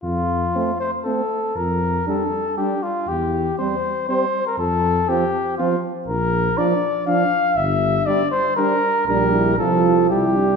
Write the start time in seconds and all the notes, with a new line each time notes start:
0.03 F2 F4
0.55 A3 C4
0.80 C5
1.05 A3 C4 A4
1.56 F2 A#4
2.07 G3 D4 A4
2.58 G3 D4 G4
2.83 F4
3.08 E2 G4
3.58 G3 C4 C5
4.09 G3 C4 C5
4.46 A#4
4.58 F2 A4
5.08 F3 C4 G4
5.58 F3 C4 F4
6.08 A#1 A#4
6.57 F3 D4 D5
7.06 F3 D4 F5
7.56 G1 E5
8.06 G3 D4 D5
8.31 C5
8.57 G3 D4 A#4
9.07 A#1 G3 D4 A#4
9.34 E4
9.58 C2 F3 F4 A4
10.10 C2 G3 E4 G4
10.37 D4